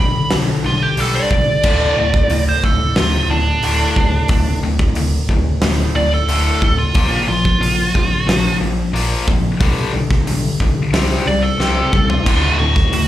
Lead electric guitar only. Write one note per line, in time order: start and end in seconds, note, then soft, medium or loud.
0.00 0.30 B5 loud
0.66 0.81 F4 medium
0.83 1.00 G4 medium
1.00 1.15 A4 medium
1.15 2.43 D5 medium
2.49 2.64 C5 medium
2.65 2.96 A4 medium
2.97 3.29 F4 medium
3.30 4.59 D4 medium
5.96 6.12 D5 medium
6.14 6.77 A4 medium
6.78 7.27 F4 medium
7.28 8.57 F4 medium
11.27 11.43 D5 medium
11.43 12.07 A4 medium
12.10 12.58 F4 loud
12.59 13.08 F#4 medium